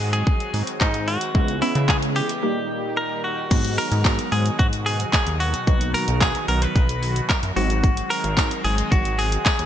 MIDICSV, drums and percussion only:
0, 0, Header, 1, 2, 480
1, 0, Start_track
1, 0, Key_signature, 5, "minor"
1, 0, Tempo, 540541
1, 1198, Time_signature, 4, 2, 24, 8
1, 8576, End_track
2, 0, Start_track
2, 0, Title_t, "Drums"
2, 0, Note_on_c, 9, 46, 79
2, 85, Note_off_c, 9, 46, 0
2, 116, Note_on_c, 9, 42, 68
2, 205, Note_off_c, 9, 42, 0
2, 238, Note_on_c, 9, 36, 118
2, 327, Note_off_c, 9, 36, 0
2, 358, Note_on_c, 9, 42, 53
2, 447, Note_off_c, 9, 42, 0
2, 477, Note_on_c, 9, 46, 77
2, 566, Note_off_c, 9, 46, 0
2, 598, Note_on_c, 9, 42, 70
2, 686, Note_off_c, 9, 42, 0
2, 717, Note_on_c, 9, 39, 116
2, 718, Note_on_c, 9, 36, 109
2, 806, Note_off_c, 9, 39, 0
2, 807, Note_off_c, 9, 36, 0
2, 835, Note_on_c, 9, 42, 54
2, 924, Note_off_c, 9, 42, 0
2, 956, Note_on_c, 9, 46, 72
2, 1045, Note_off_c, 9, 46, 0
2, 1076, Note_on_c, 9, 42, 75
2, 1165, Note_off_c, 9, 42, 0
2, 1197, Note_on_c, 9, 36, 116
2, 1286, Note_off_c, 9, 36, 0
2, 1317, Note_on_c, 9, 42, 53
2, 1406, Note_off_c, 9, 42, 0
2, 1438, Note_on_c, 9, 46, 82
2, 1527, Note_off_c, 9, 46, 0
2, 1557, Note_on_c, 9, 42, 59
2, 1646, Note_off_c, 9, 42, 0
2, 1675, Note_on_c, 9, 36, 102
2, 1678, Note_on_c, 9, 39, 109
2, 1763, Note_off_c, 9, 36, 0
2, 1766, Note_off_c, 9, 39, 0
2, 1798, Note_on_c, 9, 42, 58
2, 1887, Note_off_c, 9, 42, 0
2, 1917, Note_on_c, 9, 46, 80
2, 2005, Note_off_c, 9, 46, 0
2, 2037, Note_on_c, 9, 42, 69
2, 2126, Note_off_c, 9, 42, 0
2, 3117, Note_on_c, 9, 36, 120
2, 3117, Note_on_c, 9, 49, 99
2, 3117, Note_on_c, 9, 82, 90
2, 3206, Note_off_c, 9, 36, 0
2, 3206, Note_off_c, 9, 49, 0
2, 3206, Note_off_c, 9, 82, 0
2, 3237, Note_on_c, 9, 42, 56
2, 3237, Note_on_c, 9, 82, 55
2, 3326, Note_off_c, 9, 42, 0
2, 3326, Note_off_c, 9, 82, 0
2, 3358, Note_on_c, 9, 46, 80
2, 3358, Note_on_c, 9, 82, 60
2, 3447, Note_off_c, 9, 46, 0
2, 3447, Note_off_c, 9, 82, 0
2, 3477, Note_on_c, 9, 42, 60
2, 3477, Note_on_c, 9, 82, 62
2, 3566, Note_off_c, 9, 42, 0
2, 3566, Note_off_c, 9, 82, 0
2, 3595, Note_on_c, 9, 36, 107
2, 3597, Note_on_c, 9, 54, 84
2, 3598, Note_on_c, 9, 39, 123
2, 3598, Note_on_c, 9, 82, 75
2, 3683, Note_off_c, 9, 36, 0
2, 3686, Note_off_c, 9, 54, 0
2, 3687, Note_off_c, 9, 39, 0
2, 3687, Note_off_c, 9, 82, 0
2, 3719, Note_on_c, 9, 42, 59
2, 3719, Note_on_c, 9, 82, 61
2, 3807, Note_off_c, 9, 42, 0
2, 3807, Note_off_c, 9, 82, 0
2, 3836, Note_on_c, 9, 46, 79
2, 3836, Note_on_c, 9, 82, 59
2, 3925, Note_off_c, 9, 46, 0
2, 3925, Note_off_c, 9, 82, 0
2, 3957, Note_on_c, 9, 42, 66
2, 3957, Note_on_c, 9, 82, 69
2, 4046, Note_off_c, 9, 42, 0
2, 4046, Note_off_c, 9, 82, 0
2, 4079, Note_on_c, 9, 36, 118
2, 4079, Note_on_c, 9, 82, 74
2, 4167, Note_off_c, 9, 36, 0
2, 4168, Note_off_c, 9, 82, 0
2, 4199, Note_on_c, 9, 42, 57
2, 4199, Note_on_c, 9, 82, 59
2, 4288, Note_off_c, 9, 42, 0
2, 4288, Note_off_c, 9, 82, 0
2, 4319, Note_on_c, 9, 46, 77
2, 4319, Note_on_c, 9, 82, 55
2, 4407, Note_off_c, 9, 46, 0
2, 4407, Note_off_c, 9, 82, 0
2, 4439, Note_on_c, 9, 42, 74
2, 4439, Note_on_c, 9, 82, 69
2, 4528, Note_off_c, 9, 42, 0
2, 4528, Note_off_c, 9, 82, 0
2, 4557, Note_on_c, 9, 82, 63
2, 4558, Note_on_c, 9, 39, 125
2, 4559, Note_on_c, 9, 36, 115
2, 4559, Note_on_c, 9, 54, 96
2, 4646, Note_off_c, 9, 82, 0
2, 4647, Note_off_c, 9, 39, 0
2, 4648, Note_off_c, 9, 36, 0
2, 4648, Note_off_c, 9, 54, 0
2, 4676, Note_on_c, 9, 42, 53
2, 4676, Note_on_c, 9, 82, 54
2, 4765, Note_off_c, 9, 42, 0
2, 4765, Note_off_c, 9, 82, 0
2, 4798, Note_on_c, 9, 46, 72
2, 4798, Note_on_c, 9, 82, 50
2, 4886, Note_off_c, 9, 46, 0
2, 4886, Note_off_c, 9, 82, 0
2, 4917, Note_on_c, 9, 42, 76
2, 4917, Note_on_c, 9, 82, 73
2, 5006, Note_off_c, 9, 42, 0
2, 5006, Note_off_c, 9, 82, 0
2, 5038, Note_on_c, 9, 36, 123
2, 5038, Note_on_c, 9, 82, 87
2, 5127, Note_off_c, 9, 36, 0
2, 5127, Note_off_c, 9, 82, 0
2, 5159, Note_on_c, 9, 42, 54
2, 5159, Note_on_c, 9, 82, 52
2, 5247, Note_off_c, 9, 42, 0
2, 5247, Note_off_c, 9, 82, 0
2, 5279, Note_on_c, 9, 46, 82
2, 5279, Note_on_c, 9, 82, 60
2, 5367, Note_off_c, 9, 46, 0
2, 5367, Note_off_c, 9, 82, 0
2, 5398, Note_on_c, 9, 42, 63
2, 5398, Note_on_c, 9, 82, 64
2, 5487, Note_off_c, 9, 42, 0
2, 5487, Note_off_c, 9, 82, 0
2, 5515, Note_on_c, 9, 36, 106
2, 5517, Note_on_c, 9, 54, 84
2, 5518, Note_on_c, 9, 39, 116
2, 5518, Note_on_c, 9, 82, 79
2, 5604, Note_off_c, 9, 36, 0
2, 5606, Note_off_c, 9, 54, 0
2, 5607, Note_off_c, 9, 39, 0
2, 5607, Note_off_c, 9, 82, 0
2, 5638, Note_on_c, 9, 42, 60
2, 5638, Note_on_c, 9, 82, 63
2, 5727, Note_off_c, 9, 42, 0
2, 5727, Note_off_c, 9, 82, 0
2, 5757, Note_on_c, 9, 46, 82
2, 5757, Note_on_c, 9, 82, 59
2, 5846, Note_off_c, 9, 46, 0
2, 5846, Note_off_c, 9, 82, 0
2, 5878, Note_on_c, 9, 42, 71
2, 5878, Note_on_c, 9, 82, 69
2, 5967, Note_off_c, 9, 42, 0
2, 5967, Note_off_c, 9, 82, 0
2, 5999, Note_on_c, 9, 36, 116
2, 6000, Note_on_c, 9, 82, 73
2, 6088, Note_off_c, 9, 36, 0
2, 6089, Note_off_c, 9, 82, 0
2, 6120, Note_on_c, 9, 42, 57
2, 6120, Note_on_c, 9, 82, 60
2, 6209, Note_off_c, 9, 42, 0
2, 6209, Note_off_c, 9, 82, 0
2, 6239, Note_on_c, 9, 46, 76
2, 6239, Note_on_c, 9, 82, 58
2, 6328, Note_off_c, 9, 46, 0
2, 6328, Note_off_c, 9, 82, 0
2, 6359, Note_on_c, 9, 42, 71
2, 6359, Note_on_c, 9, 82, 75
2, 6448, Note_off_c, 9, 42, 0
2, 6448, Note_off_c, 9, 82, 0
2, 6478, Note_on_c, 9, 54, 96
2, 6478, Note_on_c, 9, 82, 62
2, 6479, Note_on_c, 9, 36, 115
2, 6479, Note_on_c, 9, 39, 126
2, 6567, Note_off_c, 9, 54, 0
2, 6567, Note_off_c, 9, 82, 0
2, 6568, Note_off_c, 9, 36, 0
2, 6568, Note_off_c, 9, 39, 0
2, 6598, Note_on_c, 9, 42, 55
2, 6598, Note_on_c, 9, 82, 55
2, 6687, Note_off_c, 9, 42, 0
2, 6687, Note_off_c, 9, 82, 0
2, 6719, Note_on_c, 9, 46, 72
2, 6719, Note_on_c, 9, 82, 51
2, 6807, Note_off_c, 9, 46, 0
2, 6807, Note_off_c, 9, 82, 0
2, 6838, Note_on_c, 9, 42, 72
2, 6838, Note_on_c, 9, 82, 72
2, 6927, Note_off_c, 9, 42, 0
2, 6927, Note_off_c, 9, 82, 0
2, 6958, Note_on_c, 9, 36, 126
2, 6958, Note_on_c, 9, 82, 91
2, 7047, Note_off_c, 9, 36, 0
2, 7047, Note_off_c, 9, 82, 0
2, 7079, Note_on_c, 9, 42, 57
2, 7079, Note_on_c, 9, 82, 55
2, 7168, Note_off_c, 9, 42, 0
2, 7168, Note_off_c, 9, 82, 0
2, 7199, Note_on_c, 9, 46, 80
2, 7199, Note_on_c, 9, 82, 61
2, 7288, Note_off_c, 9, 46, 0
2, 7288, Note_off_c, 9, 82, 0
2, 7318, Note_on_c, 9, 42, 62
2, 7318, Note_on_c, 9, 82, 61
2, 7407, Note_off_c, 9, 42, 0
2, 7407, Note_off_c, 9, 82, 0
2, 7435, Note_on_c, 9, 36, 102
2, 7438, Note_on_c, 9, 39, 120
2, 7438, Note_on_c, 9, 54, 81
2, 7438, Note_on_c, 9, 82, 75
2, 7524, Note_off_c, 9, 36, 0
2, 7526, Note_off_c, 9, 54, 0
2, 7527, Note_off_c, 9, 39, 0
2, 7527, Note_off_c, 9, 82, 0
2, 7559, Note_on_c, 9, 42, 60
2, 7559, Note_on_c, 9, 82, 63
2, 7648, Note_off_c, 9, 42, 0
2, 7648, Note_off_c, 9, 82, 0
2, 7677, Note_on_c, 9, 46, 81
2, 7677, Note_on_c, 9, 82, 58
2, 7766, Note_off_c, 9, 46, 0
2, 7766, Note_off_c, 9, 82, 0
2, 7798, Note_on_c, 9, 42, 70
2, 7798, Note_on_c, 9, 82, 72
2, 7887, Note_off_c, 9, 42, 0
2, 7887, Note_off_c, 9, 82, 0
2, 7919, Note_on_c, 9, 36, 116
2, 7919, Note_on_c, 9, 82, 75
2, 8008, Note_off_c, 9, 36, 0
2, 8008, Note_off_c, 9, 82, 0
2, 8039, Note_on_c, 9, 42, 60
2, 8039, Note_on_c, 9, 82, 59
2, 8128, Note_off_c, 9, 42, 0
2, 8128, Note_off_c, 9, 82, 0
2, 8158, Note_on_c, 9, 46, 79
2, 8158, Note_on_c, 9, 82, 57
2, 8247, Note_off_c, 9, 46, 0
2, 8247, Note_off_c, 9, 82, 0
2, 8278, Note_on_c, 9, 42, 73
2, 8278, Note_on_c, 9, 82, 71
2, 8367, Note_off_c, 9, 42, 0
2, 8367, Note_off_c, 9, 82, 0
2, 8396, Note_on_c, 9, 82, 66
2, 8398, Note_on_c, 9, 39, 123
2, 8398, Note_on_c, 9, 54, 97
2, 8399, Note_on_c, 9, 36, 110
2, 8485, Note_off_c, 9, 82, 0
2, 8486, Note_off_c, 9, 39, 0
2, 8487, Note_off_c, 9, 36, 0
2, 8487, Note_off_c, 9, 54, 0
2, 8517, Note_on_c, 9, 42, 55
2, 8517, Note_on_c, 9, 82, 55
2, 8576, Note_off_c, 9, 42, 0
2, 8576, Note_off_c, 9, 82, 0
2, 8576, End_track
0, 0, End_of_file